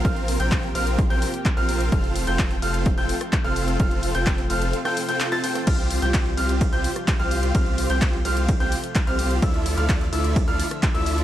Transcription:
Already playing: C3 F3 A#3
0.05 A#1 C4 F4 G4 A#4 C5 F5 F6, kick, closed hi-hat
0.16 closed hi-hat
0.28 open hi-hat
0.40 A#1 C4 F4 A#4 C5 G5 G6, closed hi-hat
0.52 kick, clap, closed hi-hat
0.63 closed hi-hat
0.75 A#1 C4 F4 A#4 C5 F5 F6, open hi-hat
0.87 closed hi-hat
0.99 kick, closed hi-hat
1.10 A#1 C4 F4 A#4 C5 G5 G6, closed hi-hat
1.22 open hi-hat
1.34 closed hi-hat
1.45 kick, clap, closed hi-hat
1.57 A#1 C4 F4 A#4 C5 F5 F6, closed hi-hat
1.69 open hi-hat
1.80 closed hi-hat
1.92 F1 F3 A3 C4 F4 A4 C5 F5 F6, kick, closed hi-hat
2.04 closed hi-hat
2.16 open hi-hat
2.27 F1 C4 F4 A4 C5 G5 G6, closed hi-hat
2.39 kick, clap, closed hi-hat
2.51 closed hi-hat
2.62 F1 C4 F4 A4 C5 F5 F6, open hi-hat
2.74 closed hi-hat
2.86 kick, closed hi-hat
2.98 F1 C4 F4 A4 C5 G5 G6, closed hi-hat
3.09 open hi-hat
3.21 cross-stick, closed hi-hat
3.33 kick, clap, closed hi-hat
3.44 F1 C4 F4 A4 C5 F5 F6, closed hi-hat
3.56 open hi-hat
3.68 closed hi-hat
3.80 F1 C4 F4 C5 F6, kick, closed hi-hat
3.91 closed hi-hat
4.03 open hi-hat
4.15 F1 C4 F4 A4 C5 G5 G6, closed hi-hat
4.26 kick, clap, closed hi-hat
4.38 closed hi-hat
4.50 F1 C4 F4 A4 C5 F5 F6, open hi-hat
4.62 closed hi-hat
4.73 closed hi-hat
4.85 C4 F4 A4 C5 G5 G6, cross-stick, closed hi-hat
4.97 open hi-hat
5.09 C4 F4 A4 C5 G5 G6, closed hi-hat
5.20 clap, closed hi-hat
5.32 C4 F4 A4 C5 A5 A6, closed hi-hat
5.44 C4 F4 A4 C5 G5 G6, open hi-hat
5.55 cross-stick, closed hi-hat
5.67 C2 G3 C4 F4 G4 C5 F5 F6, kick, closed hi-hat, crash, ride
5.79 closed hi-hat
5.91 open hi-hat
6.02 C2 C4 F4 G4 C5 G5 G6, closed hi-hat
6.14 kick, clap, closed hi-hat, ride
6.26 closed hi-hat
6.37 C2 C4 F4 G4 C5 F5 F6, open hi-hat
6.49 closed hi-hat
6.61 kick, closed hi-hat, ride
6.73 C2 C4 F4 G4 C5 G5 G6, closed hi-hat
6.84 open hi-hat
6.96 cross-stick, closed hi-hat
7.08 kick, clap, closed hi-hat, ride
7.19 C2 C4 F4 G4 C5 F5 F6, closed hi-hat
7.31 open hi-hat
7.43 closed hi-hat
7.55 C2 A3 C4 F4 G4 C5 F5 F6, kick, closed hi-hat, ride
7.66 closed hi-hat
7.78 open hi-hat
7.90 C2 C4 F4 G4 C5 G5 G6, closed hi-hat
8.02 kick, clap, closed hi-hat, ride
8.13 closed hi-hat
8.25 C2 C4 F4 G4 C5 F5 F6, open hi-hat
8.37 closed hi-hat
8.49 kick, closed hi-hat, ride
8.60 C2 C4 F4 G4 C5 G5 G6, closed hi-hat
8.72 open hi-hat
8.84 closed hi-hat
8.95 kick, clap, closed hi-hat, ride
9.07 C2 C4 F4 G4 C5 F5 F6, closed hi-hat
9.19 open hi-hat
9.31 closed hi-hat
9.42 D2 D3 E4 F4 D5 E5 E6, kick, closed hi-hat, ride
9.54 closed hi-hat
9.66 open hi-hat
9.77 D2 E4 F4 A4 D5 F5 F6, closed hi-hat
9.89 kick, clap, closed hi-hat, ride
10.01 closed hi-hat
10.13 D2 E4 F4 A4 D5 E5 E6, open hi-hat
10.24 closed hi-hat
10.36 kick, closed hi-hat, ride
10.48 D2 E4 F4 A4 D5 F5 F6, closed hi-hat
10.60 open hi-hat
10.71 cross-stick, closed hi-hat
10.83 kick, clap, closed hi-hat, ride
10.94 D2 E4 F4 A4 D5 E5 E6, closed hi-hat
11.06 open hi-hat
11.18 closed hi-hat

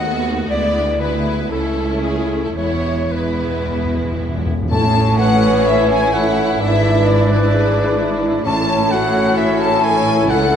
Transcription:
Already playing: D#2 A3 B3
0.00 A3 B3 F#4 F#5
0.49 D2 G#3 B3 E4 D5
1.01 G#3 B3 E4 B4
1.50 C#2 A3 C#4 E4 A4
2.03 G#4
2.44 A4
2.56 E1 E2 G#3 B3 E4 C#5
2.65 E2
2.74 E2
2.83 E2
2.91 E2
3.00 E2
3.09 E2 G#3 B3 E4 B4
3.17 E2
3.26 E2
3.34 E2
3.42 E2
3.51 E2
3.59 E2
3.68 E2
3.76 E2
3.85 E2
3.94 E2
4.02 E2
4.11 E2
4.20 E2
4.28 E2
4.38 E2
4.46 E2
4.55 E2
4.62 E2
4.71 A1 A2 E3 C#4 E4 A4 C#5 A5
5.19 B4 F#5
5.67 E5
5.90 G#5
6.13 A4 F#5
6.59 G#1 G#2 D4 B4 D5 E5
7.07 D5
7.30 B4
7.54 G#4
8.00 E4
8.45 A1 A2 E3 C#4 E4 A4 C#5 A5
8.91 F#4 F#5
9.38 E5
9.60 A5
9.84 E4 G#5
10.29 C#2 A3 A4 F#5

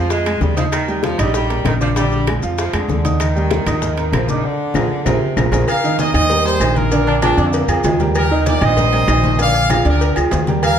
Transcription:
Already playing: F2 F3 F4 F5
0.10 G#3, high bongo, high conga, high timbale, maracas
0.26 G#3 G#4 G#5, high bongo, high conga, high timbale, claves, maracas
0.41 D#2 G3, high bongo, low bongo, high conga, maracas
0.57 F3 D#4 D#5 D#6, high conga, high timbale, maracas
0.72 D#3, high bongo, high conga, high timbale, claves, maracas
0.88 G3 G4 G5, high bongo, high conga, maracas
1.03 F3, high bongo, high conga, high timbale, maracas
1.19 A#1 G3 D#4 D#5 D#6, high bongo, high conga, low conga, high timbale, claves, maracas
1.34 G3, high bongo, high conga, maracas
1.50 A#3 A#4 A#5, high bongo, high timbale, maracas
1.65 A#1 D#3, high bongo, low bongo, high conga, high timbale, claves, maracas
1.80 F3 D4 D5 D6, high conga, maracas
1.96 D3 G3 D4 D5, high bongo, high conga, high timbale, maracas
2.12 high bongo, high conga, maracas
2.27 G#3 G#4 G#5, high bongo, high conga, high timbale, claves, maracas
2.42 F2 F3 F4 F5, high bongo, high conga, maracas
2.58 F3, high bongo, high conga, high timbale, maracas
2.73 F2 D3 G#3 G#4 G#5, high bongo, high conga, high timbale, claves, maracas
2.88 D#2 D3, high bongo, low bongo, high conga, maracas
3.04 D#4 D#5 D#6, high conga, high timbale, maracas
3.20 D#3, high bongo, high conga, high timbale, claves, maracas
3.35 G3 G4 G5, high bongo, high conga, maracas
3.51 high bongo, high conga, high timbale, maracas
3.66 D#2 D#4 D#5 D#6, high bongo, high conga, low conga, high timbale, claves, maracas
3.82 high bongo, high conga, low conga, maracas
3.97 A#3 A#4 A#5, high bongo, high conga, high timbale, maracas
4.13 A#1 F3, high bongo, low bongo, high conga, high timbale, low timbale, claves, maracas
4.28 D#3 D4 D5 D6, high conga, maracas
4.45 D3
4.74 A#1 F4 G#4 A#4, low bongo, high conga, high timbale, claves, maracas
5.06 A#1 C3 F4 G#4 A#4, low bongo, high conga, high timbale, claves, maracas
5.37 A#1 A#2 F4 G#4 A#4, low bongo, high conga, high timbale, claves, maracas
5.52 A#1 F4 G#4 A#4, low bongo, high conga, high timbale, claves, maracas
5.68 A#4 F5, cowbell, high conga, low agogo, claves, maracas
5.84 D#3 D#4 D#5, high conga, maracas
5.99 A#4 D#5, cowbell, high conga, low timbale, low agogo, maracas
6.14 D#2 D#3 D#4 C5 D#5, cowbell, high conga, low conga, low agogo, claves, maracas
6.29 G3 G4 A#4, cowbell, high conga, maracas
6.45 G3 G4 G#4 A#4 C5, high conga, low agogo
6.60 A#1 D#3 D#4 D#5, cowbell, low timbale, low agogo, claves, maracas
6.76 F4 A#4, cowbell, high conga, maracas
6.92 D3 D4 D5, cowbell, high conga, low agogo, maracas
7.07 D4, high conga, low agogo
7.22 F3 D4 F4 G#4, cowbell, high conga, low timbale, low agogo, claves, maracas
7.37 F2 D3 D4 D5, cowbell, low agogo, maracas
7.46 A3
7.53 A#3, cowbell, high conga, maracas
7.68 F2 F3 F4 G#4, high conga, low agogo, claves, maracas
7.84 D#2 F3 G#3 F4 G#4, cowbell, high conga, low timbale, low agogo, maracas
8.00 G3 G4 A#4, cowbell, high conga, maracas
8.15 G4 A#4, cowbell, high conga, low agogo, claves, maracas
8.31 D#3 D#4 D#5, high conga
8.46 A#4 D5, cowbell, high conga, low timbale, low agogo, maracas
8.61 A#1 D#3 D#4 C5 D#5, cowbell, high conga, low conga, low agogo, claves, maracas
8.77 G3 G4 A#4, cowbell, high conga, low conga, maracas
8.93 G3 G4 A#4, low agogo
9.08 A#1 D#3 D#4 D#5, cowbell, low timbale, low agogo, claves, maracas
9.23 cowbell, high conga, maracas
9.39 D3 D4 D5 F5, cowbell, high conga, low agogo, maracas
9.54 high conga, low agogo, maracas
9.70 F3 F4 G#4 D5 F5, cowbell, high conga, low timbale, low agogo, claves, maracas
9.85 D2 D3 D4 G4 A#4 D5, cowbell, low agogo, maracas
10.01 cowbell, high conga, maracas
10.16 D2 F3 F4 G#4, high conga, low agogo, claves, maracas
10.31 D#2 F3 F4 G#4, cowbell, high conga, low timbale, low agogo, maracas
10.47 G3 G4 A#4, cowbell, high conga, maracas
10.63 A#4 F5, cowbell, high conga, low agogo, claves, maracas

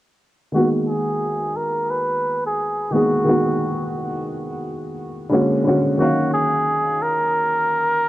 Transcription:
0.52 D#3 G#3 A#3 B3 F#4
0.57 F#4
0.88 G#4
1.56 A#4
1.90 B4
2.46 G#4
2.91 D#3 G#3 A#3 B3 F#4
2.96 G#4
3.24 D#3 G#3 A#3 B3
3.29 F#4
5.29 D3 G#3 A#3 C#4
5.34 F#4
5.63 D3 G#3 A#3 C#4
5.68 F#4
5.98 D#3 F#3 A#3 C#4 F#4
6.02 F5
6.33 G#4
7.02 A#4

